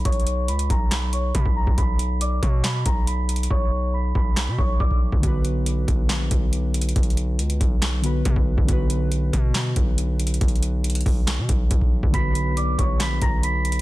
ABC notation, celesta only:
X:1
M:4/4
L:1/8
Q:1/4=139
K:Bm
V:1 name="Celesta"
[cc']2 [bb'] [^a^a'] [bb'] [cc'] [bb'] [aa'] | [bb']2 [dd'] c [bb'] [^a^a'] [bb']2 | [cc']2 [bb'] [bb']2 [cc'] [dd'] z | z8 |
z8 | z8 | z8 | [bb']2 [dd'] [cc'] [bb'] [^a^a'] [bb']2 |]